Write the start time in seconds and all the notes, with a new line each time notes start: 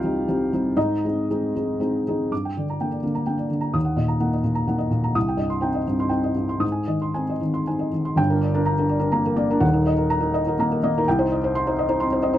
Already playing: C2 G3 C4 D#4 F4 G4 F5 G5
0.04 G3 C4 D#4
0.28 G3 C4 D#4
0.53 G3 C4 D#4
0.77 G#2 D#4 D#5
1.05 G#3 C4 D#4
1.30 G#3 C4 D#4
1.55 G#3 C4 D#4
1.80 G#3 C4 D#4
2.08 G#3 C4 D#4
2.31 G2 D6
2.45 G5
2.57 D3 D5
2.70 A#5
2.81 A#3 D4 G5
2.91 D5
3.03 D3 A#3
3.15 A#5
3.27 A#3 D4 G5
3.38 D5
3.50 D3
3.61 A#5
3.73 D#2 D#6
3.85 F#5
3.96 A#2 D#5
4.08 A#5
4.20 A#3 D#4 F#5
4.34 D#5
4.44 A#2 A#3
4.55 A#5
4.68 A#3 D#4 F#5
4.78 D#5
4.90 A#2
5.04 A#5
5.15 C2 D#6
5.28 G5
5.37 G2 D#5
5.50 C6
5.61 C4 D#4 G5
5.74 D#5
5.87 G2 C4
6.00 C6
6.09 C4 D#4 G5
6.24 D#5
6.35 G2
6.49 C6
6.60 G#2 D#6
6.72 G#5
6.87 D#3 D#5
7.02 C6
7.14 C4 D#4 G#5
7.30 D#5
7.41 D#3 C4
7.54 C6
7.67 C4 D#4 G#5
7.79 D#5
7.93 D#3
8.05 C6
8.16 G1 G2 G5
8.30 D4 A#4
8.41 D5
8.54 D4 A#4
8.66 A#5
8.78 D4 A#4
8.90 D5
9.00 D4 A#4
9.12 A#3 A#5
9.26 A#4
9.36 A#3 D5
9.51 D4 A#4
9.60 D#1 D#2 F#5
9.73 D#4 A#4
9.87 D#5
9.98 A#4
10.10 A#5
10.21 D#4 A#4
10.34 D#5
10.47 D#4 A#4
10.59 A#3 A#5
10.72 A#4
10.84 A#3 D#5
10.98 D#4 A#4
11.08 C2 G5
11.19 D#4 C5
11.32 D#5
11.44 C5
11.55 C6
11.67 D#4 C5
11.79 D#5
11.89 D#4 C5
12.00 C4 C6
12.13 C5
12.23 C4 D#5
12.33 D#4 C5